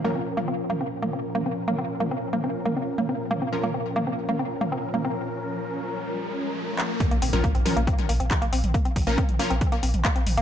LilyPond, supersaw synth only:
\new Staff \with { instrumentName = "Supersaw synth" } { \time 4/4 \key bes \minor \tempo 4 = 138 <f des' bes'>1~ | <f des' bes'>1 | <f des' bes'>1~ | <f des' bes'>1 |
r8. <f des' bes'>16 r8 <f des' bes'>16 r2 r16 | r8. <f des' bes'>16 r8 <f des' bes'>16 r2 r16 | }